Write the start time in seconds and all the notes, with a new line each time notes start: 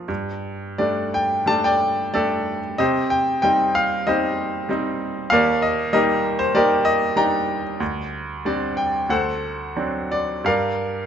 Already playing: F3 A#3 D4 A#4 F5
0.08 G2
0.78 G3 A3 D4 D5
1.14 G5
1.46 G3 A3 D4 D5 A5
1.64 D5 G5
2.14 G3 A3 D4 G4 A4 D5
2.78 C3 G4 C5 D#5
3.10 G5
3.42 G3 C4 D#4 G5
3.75 F5
4.07 G3 C4 D#4 G4 C5 D#5
4.69 G3 C4 D#4
5.30 D#2 A#4 D5 F5
5.62 D#5
5.93 G3 A#3 D#4 G4 A#4 D#5
6.39 C5
6.55 G3 A#3 D#4 G4 A#4 D5
6.85 D#5
7.16 G3 D4 D#4 D5 G5 A#5
7.80 D2
8.45 G3 C4 D4 D5
8.77 G5
9.09 D2 A4 C5 F#5
9.76 F#3 C4 D4
10.12 D5
10.44 G2 A#4 D5 F5